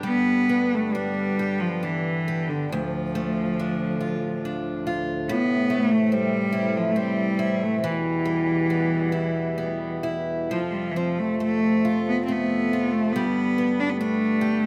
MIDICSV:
0, 0, Header, 1, 4, 480
1, 0, Start_track
1, 0, Tempo, 887574
1, 40, Time_signature, 3, 2, 24, 8
1, 1479, Tempo, 854701
1, 4839, Tempo, 902256
1, 6279, Tempo, 857143
1, 8093, End_track
2, 0, Start_track
2, 0, Title_t, "Steel-string acoustic guitar"
2, 0, Program_c, 0, 25
2, 0, Note_on_c, 0, 62, 46
2, 0, Note_on_c, 0, 67, 58
2, 17, Note_on_c, 0, 55, 54
2, 267, Note_on_c, 0, 59, 46
2, 510, Note_off_c, 0, 62, 0
2, 513, Note_on_c, 0, 62, 50
2, 751, Note_off_c, 0, 67, 0
2, 753, Note_on_c, 0, 67, 47
2, 986, Note_off_c, 0, 62, 0
2, 988, Note_on_c, 0, 62, 49
2, 1226, Note_off_c, 0, 67, 0
2, 1232, Note_on_c, 0, 67, 54
2, 1469, Note_off_c, 0, 55, 0
2, 1473, Note_on_c, 0, 38, 66
2, 1522, Note_off_c, 0, 59, 0
2, 1524, Note_off_c, 0, 67, 0
2, 1713, Note_on_c, 0, 57, 49
2, 1960, Note_off_c, 0, 62, 0
2, 1962, Note_on_c, 0, 62, 51
2, 2193, Note_on_c, 0, 65, 49
2, 2436, Note_off_c, 0, 62, 0
2, 2443, Note_on_c, 0, 62, 48
2, 2669, Note_off_c, 0, 65, 0
2, 2676, Note_on_c, 0, 65, 60
2, 2916, Note_on_c, 0, 45, 70
2, 2918, Note_off_c, 0, 38, 0
2, 2963, Note_off_c, 0, 65, 0
2, 2967, Note_off_c, 0, 62, 0
2, 3142, Note_off_c, 0, 57, 0
2, 3144, Note_on_c, 0, 57, 45
2, 3379, Note_on_c, 0, 60, 58
2, 3608, Note_on_c, 0, 64, 62
2, 3845, Note_off_c, 0, 60, 0
2, 3851, Note_on_c, 0, 60, 55
2, 4090, Note_off_c, 0, 64, 0
2, 4093, Note_on_c, 0, 64, 62
2, 4344, Note_on_c, 0, 52, 62
2, 4352, Note_off_c, 0, 45, 0
2, 4394, Note_off_c, 0, 60, 0
2, 4397, Note_off_c, 0, 57, 0
2, 4579, Note_on_c, 0, 55, 47
2, 4829, Note_on_c, 0, 59, 50
2, 5052, Note_off_c, 0, 64, 0
2, 5054, Note_on_c, 0, 64, 55
2, 5290, Note_off_c, 0, 59, 0
2, 5296, Note_on_c, 0, 59, 51
2, 5532, Note_off_c, 0, 64, 0
2, 5538, Note_on_c, 0, 64, 55
2, 5790, Note_off_c, 0, 52, 0
2, 5792, Note_on_c, 0, 53, 55
2, 5840, Note_off_c, 0, 64, 0
2, 5841, Note_off_c, 0, 55, 0
2, 5842, Note_off_c, 0, 59, 0
2, 6033, Note_on_c, 0, 60, 42
2, 6267, Note_on_c, 0, 57, 45
2, 6516, Note_on_c, 0, 65, 53
2, 6754, Note_off_c, 0, 57, 0
2, 6760, Note_on_c, 0, 57, 50
2, 7004, Note_off_c, 0, 65, 0
2, 7011, Note_on_c, 0, 65, 57
2, 7246, Note_off_c, 0, 53, 0
2, 7249, Note_on_c, 0, 55, 65
2, 7293, Note_off_c, 0, 60, 0
2, 7294, Note_off_c, 0, 57, 0
2, 7298, Note_off_c, 0, 65, 0
2, 7486, Note_on_c, 0, 59, 46
2, 7725, Note_on_c, 0, 62, 53
2, 7952, Note_on_c, 0, 67, 60
2, 8093, Note_off_c, 0, 55, 0
2, 8093, Note_off_c, 0, 59, 0
2, 8093, Note_off_c, 0, 62, 0
2, 8093, Note_off_c, 0, 67, 0
2, 8093, End_track
3, 0, Start_track
3, 0, Title_t, "Cello"
3, 0, Program_c, 1, 42
3, 44, Note_on_c, 1, 59, 80
3, 402, Note_on_c, 1, 57, 69
3, 410, Note_off_c, 1, 59, 0
3, 510, Note_on_c, 1, 55, 71
3, 518, Note_off_c, 1, 57, 0
3, 867, Note_on_c, 1, 53, 65
3, 876, Note_off_c, 1, 55, 0
3, 972, Note_off_c, 1, 53, 0
3, 972, Note_on_c, 1, 53, 50
3, 996, Note_on_c, 1, 52, 62
3, 1004, Note_off_c, 1, 53, 0
3, 1346, Note_on_c, 1, 50, 61
3, 1354, Note_off_c, 1, 52, 0
3, 1457, Note_on_c, 1, 53, 56
3, 1465, Note_off_c, 1, 50, 0
3, 2675, Note_off_c, 1, 53, 0
3, 2926, Note_on_c, 1, 59, 77
3, 3265, Note_on_c, 1, 57, 72
3, 3273, Note_off_c, 1, 59, 0
3, 3346, Note_off_c, 1, 57, 0
3, 3346, Note_on_c, 1, 57, 59
3, 3394, Note_on_c, 1, 55, 79
3, 3402, Note_off_c, 1, 57, 0
3, 3745, Note_on_c, 1, 53, 67
3, 3753, Note_off_c, 1, 55, 0
3, 3822, Note_on_c, 1, 57, 61
3, 3831, Note_off_c, 1, 53, 0
3, 3859, Note_on_c, 1, 55, 75
3, 3867, Note_off_c, 1, 57, 0
3, 4228, Note_on_c, 1, 57, 77
3, 4237, Note_off_c, 1, 55, 0
3, 4347, Note_off_c, 1, 57, 0
3, 4350, Note_on_c, 1, 52, 61
3, 5533, Note_off_c, 1, 52, 0
3, 5791, Note_on_c, 1, 53, 62
3, 5899, Note_on_c, 1, 55, 42
3, 5907, Note_off_c, 1, 53, 0
3, 5910, Note_on_c, 1, 53, 65
3, 5918, Note_off_c, 1, 55, 0
3, 6008, Note_on_c, 1, 52, 44
3, 6015, Note_off_c, 1, 53, 0
3, 6036, Note_on_c, 1, 53, 62
3, 6044, Note_off_c, 1, 52, 0
3, 6151, Note_on_c, 1, 57, 63
3, 6159, Note_off_c, 1, 53, 0
3, 6273, Note_off_c, 1, 57, 0
3, 6287, Note_on_c, 1, 57, 79
3, 6627, Note_off_c, 1, 57, 0
3, 6652, Note_on_c, 1, 59, 67
3, 6726, Note_off_c, 1, 59, 0
3, 6741, Note_on_c, 1, 60, 49
3, 6780, Note_on_c, 1, 59, 72
3, 6788, Note_off_c, 1, 60, 0
3, 7118, Note_on_c, 1, 57, 77
3, 7127, Note_off_c, 1, 59, 0
3, 7229, Note_on_c, 1, 59, 75
3, 7237, Note_off_c, 1, 57, 0
3, 7608, Note_on_c, 1, 62, 80
3, 7616, Note_off_c, 1, 59, 0
3, 7662, Note_on_c, 1, 59, 56
3, 7671, Note_off_c, 1, 62, 0
3, 7705, Note_on_c, 1, 57, 83
3, 7713, Note_off_c, 1, 59, 0
3, 8093, Note_off_c, 1, 57, 0
3, 8093, End_track
4, 0, Start_track
4, 0, Title_t, "Harmonium"
4, 0, Program_c, 2, 20
4, 43, Note_on_c, 2, 43, 49
4, 46, Note_on_c, 2, 50, 50
4, 47, Note_on_c, 2, 59, 56
4, 1467, Note_off_c, 2, 43, 0
4, 1469, Note_off_c, 2, 50, 0
4, 1469, Note_off_c, 2, 59, 0
4, 1481, Note_on_c, 2, 38, 55
4, 1483, Note_on_c, 2, 45, 52
4, 1486, Note_on_c, 2, 53, 56
4, 2908, Note_off_c, 2, 38, 0
4, 2911, Note_off_c, 2, 53, 0
4, 2930, Note_on_c, 2, 52, 55
4, 2932, Note_on_c, 2, 48, 64
4, 4333, Note_off_c, 2, 45, 0
4, 4344, Note_off_c, 2, 52, 0
4, 4345, Note_off_c, 2, 48, 0
4, 4349, Note_on_c, 2, 40, 55
4, 4350, Note_on_c, 2, 47, 50
4, 4356, Note_on_c, 2, 55, 63
4, 5784, Note_off_c, 2, 40, 0
4, 5784, Note_off_c, 2, 47, 0
4, 5787, Note_off_c, 2, 55, 0
4, 5799, Note_on_c, 2, 57, 61
4, 5800, Note_on_c, 2, 48, 49
4, 5801, Note_on_c, 2, 41, 51
4, 7234, Note_off_c, 2, 57, 0
4, 7235, Note_off_c, 2, 41, 0
4, 7235, Note_off_c, 2, 48, 0
4, 7265, Note_on_c, 2, 43, 52
4, 7265, Note_on_c, 2, 50, 53
4, 7265, Note_on_c, 2, 59, 56
4, 8093, Note_off_c, 2, 43, 0
4, 8093, Note_off_c, 2, 50, 0
4, 8093, Note_off_c, 2, 59, 0
4, 8093, End_track
0, 0, End_of_file